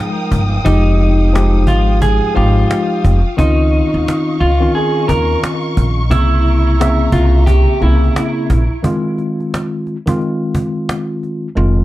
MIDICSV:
0, 0, Header, 1, 6, 480
1, 0, Start_track
1, 0, Key_signature, -4, "minor"
1, 0, Tempo, 681818
1, 463, Time_signature, 4, 2, 24, 8
1, 8338, End_track
2, 0, Start_track
2, 0, Title_t, "String section"
2, 0, Program_c, 0, 48
2, 0, Note_on_c, 0, 56, 81
2, 0, Note_on_c, 0, 77, 73
2, 0, Note_on_c, 0, 79, 73
2, 0, Note_on_c, 0, 87, 89
2, 2353, Note_off_c, 0, 56, 0
2, 2353, Note_off_c, 0, 87, 0
2, 2354, Note_off_c, 0, 79, 0
2, 2382, Note_on_c, 0, 75, 75
2, 2382, Note_on_c, 0, 85, 93
2, 4273, Note_off_c, 0, 77, 0
2, 4283, Note_off_c, 0, 75, 0
2, 4303, Note_on_c, 0, 82, 79
2, 4304, Note_on_c, 0, 76, 71
2, 6194, Note_off_c, 0, 85, 0
2, 6204, Note_off_c, 0, 76, 0
2, 6204, Note_off_c, 0, 82, 0
2, 8338, End_track
3, 0, Start_track
3, 0, Title_t, "Clean electric guitar"
3, 0, Program_c, 1, 27
3, 457, Note_on_c, 1, 63, 102
3, 1152, Note_off_c, 1, 63, 0
3, 1181, Note_on_c, 1, 65, 78
3, 1398, Note_off_c, 1, 65, 0
3, 1421, Note_on_c, 1, 68, 89
3, 1638, Note_off_c, 1, 68, 0
3, 1658, Note_on_c, 1, 65, 79
3, 2353, Note_off_c, 1, 65, 0
3, 2380, Note_on_c, 1, 63, 97
3, 3073, Note_off_c, 1, 63, 0
3, 3101, Note_on_c, 1, 65, 79
3, 3318, Note_off_c, 1, 65, 0
3, 3343, Note_on_c, 1, 68, 77
3, 3559, Note_off_c, 1, 68, 0
3, 3576, Note_on_c, 1, 70, 81
3, 3795, Note_off_c, 1, 70, 0
3, 4300, Note_on_c, 1, 64, 106
3, 4993, Note_off_c, 1, 64, 0
3, 5018, Note_on_c, 1, 65, 75
3, 5236, Note_off_c, 1, 65, 0
3, 5254, Note_on_c, 1, 67, 89
3, 5474, Note_off_c, 1, 67, 0
3, 5509, Note_on_c, 1, 64, 81
3, 6198, Note_off_c, 1, 64, 0
3, 8338, End_track
4, 0, Start_track
4, 0, Title_t, "Tine electric piano"
4, 0, Program_c, 2, 4
4, 0, Note_on_c, 2, 53, 98
4, 0, Note_on_c, 2, 56, 85
4, 0, Note_on_c, 2, 63, 93
4, 0, Note_on_c, 2, 79, 117
4, 397, Note_off_c, 2, 53, 0
4, 400, Note_off_c, 2, 56, 0
4, 402, Note_off_c, 2, 63, 0
4, 405, Note_off_c, 2, 79, 0
4, 454, Note_on_c, 2, 53, 96
4, 459, Note_on_c, 2, 56, 87
4, 464, Note_on_c, 2, 63, 85
4, 469, Note_on_c, 2, 67, 108
4, 910, Note_off_c, 2, 53, 0
4, 912, Note_off_c, 2, 56, 0
4, 915, Note_off_c, 2, 63, 0
4, 918, Note_off_c, 2, 67, 0
4, 938, Note_on_c, 2, 53, 97
4, 943, Note_on_c, 2, 56, 86
4, 948, Note_on_c, 2, 63, 84
4, 954, Note_on_c, 2, 67, 96
4, 1618, Note_off_c, 2, 53, 0
4, 1620, Note_off_c, 2, 56, 0
4, 1623, Note_off_c, 2, 63, 0
4, 1626, Note_off_c, 2, 67, 0
4, 1651, Note_on_c, 2, 53, 91
4, 1656, Note_on_c, 2, 56, 88
4, 1662, Note_on_c, 2, 63, 89
4, 1667, Note_on_c, 2, 67, 106
4, 2227, Note_off_c, 2, 53, 0
4, 2230, Note_off_c, 2, 56, 0
4, 2233, Note_off_c, 2, 63, 0
4, 2236, Note_off_c, 2, 67, 0
4, 2371, Note_on_c, 2, 51, 96
4, 2376, Note_on_c, 2, 60, 86
4, 2382, Note_on_c, 2, 61, 86
4, 2388, Note_on_c, 2, 65, 106
4, 3163, Note_off_c, 2, 51, 0
4, 3166, Note_off_c, 2, 60, 0
4, 3169, Note_off_c, 2, 61, 0
4, 3172, Note_off_c, 2, 65, 0
4, 3237, Note_on_c, 2, 51, 102
4, 3242, Note_on_c, 2, 60, 87
4, 3248, Note_on_c, 2, 61, 88
4, 3254, Note_on_c, 2, 65, 111
4, 4230, Note_off_c, 2, 51, 0
4, 4233, Note_off_c, 2, 60, 0
4, 4236, Note_off_c, 2, 61, 0
4, 4239, Note_off_c, 2, 65, 0
4, 4295, Note_on_c, 2, 49, 92
4, 4300, Note_on_c, 2, 58, 89
4, 4306, Note_on_c, 2, 60, 87
4, 4311, Note_on_c, 2, 64, 105
4, 4750, Note_off_c, 2, 49, 0
4, 4753, Note_off_c, 2, 58, 0
4, 4756, Note_off_c, 2, 60, 0
4, 4758, Note_off_c, 2, 64, 0
4, 4786, Note_on_c, 2, 49, 97
4, 4791, Note_on_c, 2, 58, 86
4, 4796, Note_on_c, 2, 60, 95
4, 4802, Note_on_c, 2, 76, 108
4, 5462, Note_off_c, 2, 49, 0
4, 5464, Note_off_c, 2, 58, 0
4, 5466, Note_off_c, 2, 60, 0
4, 5470, Note_off_c, 2, 76, 0
4, 5497, Note_on_c, 2, 49, 94
4, 5503, Note_on_c, 2, 58, 99
4, 5508, Note_on_c, 2, 60, 89
4, 5514, Note_on_c, 2, 64, 113
4, 6070, Note_off_c, 2, 49, 0
4, 6073, Note_off_c, 2, 58, 0
4, 6076, Note_off_c, 2, 60, 0
4, 6079, Note_off_c, 2, 64, 0
4, 6214, Note_on_c, 2, 51, 93
4, 6219, Note_on_c, 2, 56, 82
4, 6225, Note_on_c, 2, 60, 84
4, 6231, Note_on_c, 2, 65, 100
4, 7005, Note_off_c, 2, 51, 0
4, 7007, Note_off_c, 2, 56, 0
4, 7010, Note_off_c, 2, 60, 0
4, 7013, Note_off_c, 2, 65, 0
4, 7083, Note_on_c, 2, 51, 96
4, 7090, Note_on_c, 2, 56, 82
4, 7095, Note_on_c, 2, 60, 94
4, 7100, Note_on_c, 2, 65, 112
4, 8074, Note_off_c, 2, 51, 0
4, 8077, Note_off_c, 2, 56, 0
4, 8079, Note_off_c, 2, 60, 0
4, 8082, Note_off_c, 2, 65, 0
4, 8133, Note_on_c, 2, 51, 89
4, 8139, Note_on_c, 2, 56, 84
4, 8144, Note_on_c, 2, 60, 80
4, 8150, Note_on_c, 2, 65, 101
4, 8338, Note_off_c, 2, 51, 0
4, 8338, Note_off_c, 2, 56, 0
4, 8338, Note_off_c, 2, 60, 0
4, 8338, Note_off_c, 2, 65, 0
4, 8338, End_track
5, 0, Start_track
5, 0, Title_t, "Upright bass"
5, 0, Program_c, 3, 32
5, 222, Note_on_c, 3, 31, 91
5, 403, Note_off_c, 3, 31, 0
5, 463, Note_on_c, 3, 29, 106
5, 1175, Note_off_c, 3, 29, 0
5, 1175, Note_on_c, 3, 32, 90
5, 1540, Note_off_c, 3, 32, 0
5, 1664, Note_on_c, 3, 32, 94
5, 1844, Note_off_c, 3, 32, 0
5, 2143, Note_on_c, 3, 29, 107
5, 2257, Note_off_c, 3, 29, 0
5, 2384, Note_on_c, 3, 37, 110
5, 2678, Note_off_c, 3, 37, 0
5, 2773, Note_on_c, 3, 39, 92
5, 2840, Note_off_c, 3, 39, 0
5, 3102, Note_on_c, 3, 37, 96
5, 3283, Note_off_c, 3, 37, 0
5, 3583, Note_on_c, 3, 39, 95
5, 3764, Note_off_c, 3, 39, 0
5, 4064, Note_on_c, 3, 34, 88
5, 4304, Note_off_c, 3, 34, 0
5, 4304, Note_on_c, 3, 36, 115
5, 4995, Note_off_c, 3, 36, 0
5, 5015, Note_on_c, 3, 36, 99
5, 5379, Note_off_c, 3, 36, 0
5, 5503, Note_on_c, 3, 36, 91
5, 5683, Note_off_c, 3, 36, 0
5, 5983, Note_on_c, 3, 34, 92
5, 6097, Note_off_c, 3, 34, 0
5, 8143, Note_on_c, 3, 29, 102
5, 8338, Note_off_c, 3, 29, 0
5, 8338, End_track
6, 0, Start_track
6, 0, Title_t, "Cajon"
6, 222, Note_on_c, 9, 36, 91
6, 293, Note_off_c, 9, 36, 0
6, 463, Note_on_c, 9, 36, 117
6, 534, Note_off_c, 9, 36, 0
6, 703, Note_on_c, 9, 38, 42
6, 773, Note_off_c, 9, 38, 0
6, 954, Note_on_c, 9, 38, 120
6, 1024, Note_off_c, 9, 38, 0
6, 1175, Note_on_c, 9, 36, 93
6, 1245, Note_off_c, 9, 36, 0
6, 1420, Note_on_c, 9, 36, 97
6, 1491, Note_off_c, 9, 36, 0
6, 1666, Note_on_c, 9, 38, 42
6, 1736, Note_off_c, 9, 38, 0
6, 1823, Note_on_c, 9, 38, 41
6, 1893, Note_off_c, 9, 38, 0
6, 1905, Note_on_c, 9, 38, 125
6, 1976, Note_off_c, 9, 38, 0
6, 2143, Note_on_c, 9, 36, 91
6, 2214, Note_off_c, 9, 36, 0
6, 2384, Note_on_c, 9, 36, 116
6, 2454, Note_off_c, 9, 36, 0
6, 2623, Note_on_c, 9, 38, 44
6, 2694, Note_off_c, 9, 38, 0
6, 2875, Note_on_c, 9, 38, 120
6, 2945, Note_off_c, 9, 38, 0
6, 3106, Note_on_c, 9, 38, 46
6, 3176, Note_off_c, 9, 38, 0
6, 3345, Note_on_c, 9, 38, 50
6, 3415, Note_off_c, 9, 38, 0
6, 3583, Note_on_c, 9, 36, 93
6, 3654, Note_off_c, 9, 36, 0
6, 3744, Note_on_c, 9, 38, 43
6, 3815, Note_off_c, 9, 38, 0
6, 3827, Note_on_c, 9, 38, 121
6, 3897, Note_off_c, 9, 38, 0
6, 4063, Note_on_c, 9, 36, 90
6, 4134, Note_off_c, 9, 36, 0
6, 4304, Note_on_c, 9, 36, 113
6, 4374, Note_off_c, 9, 36, 0
6, 4544, Note_on_c, 9, 38, 41
6, 4615, Note_off_c, 9, 38, 0
6, 4699, Note_on_c, 9, 38, 34
6, 4769, Note_off_c, 9, 38, 0
6, 4795, Note_on_c, 9, 38, 118
6, 4865, Note_off_c, 9, 38, 0
6, 5015, Note_on_c, 9, 36, 89
6, 5085, Note_off_c, 9, 36, 0
6, 5260, Note_on_c, 9, 36, 98
6, 5331, Note_off_c, 9, 36, 0
6, 5506, Note_on_c, 9, 38, 41
6, 5576, Note_off_c, 9, 38, 0
6, 5664, Note_on_c, 9, 38, 41
6, 5734, Note_off_c, 9, 38, 0
6, 5746, Note_on_c, 9, 38, 123
6, 5817, Note_off_c, 9, 38, 0
6, 5983, Note_on_c, 9, 36, 91
6, 6054, Note_off_c, 9, 36, 0
6, 6224, Note_on_c, 9, 36, 107
6, 6295, Note_off_c, 9, 36, 0
6, 6464, Note_on_c, 9, 38, 41
6, 6535, Note_off_c, 9, 38, 0
6, 6619, Note_on_c, 9, 38, 31
6, 6690, Note_off_c, 9, 38, 0
6, 6716, Note_on_c, 9, 38, 116
6, 6786, Note_off_c, 9, 38, 0
6, 6947, Note_on_c, 9, 38, 44
6, 7017, Note_off_c, 9, 38, 0
6, 7092, Note_on_c, 9, 36, 94
6, 7162, Note_off_c, 9, 36, 0
6, 7186, Note_on_c, 9, 38, 48
6, 7256, Note_off_c, 9, 38, 0
6, 7424, Note_on_c, 9, 36, 89
6, 7495, Note_off_c, 9, 36, 0
6, 7667, Note_on_c, 9, 38, 117
6, 7738, Note_off_c, 9, 38, 0
6, 7908, Note_on_c, 9, 38, 38
6, 7978, Note_off_c, 9, 38, 0
6, 8146, Note_on_c, 9, 38, 53
6, 8216, Note_off_c, 9, 38, 0
6, 8338, End_track
0, 0, End_of_file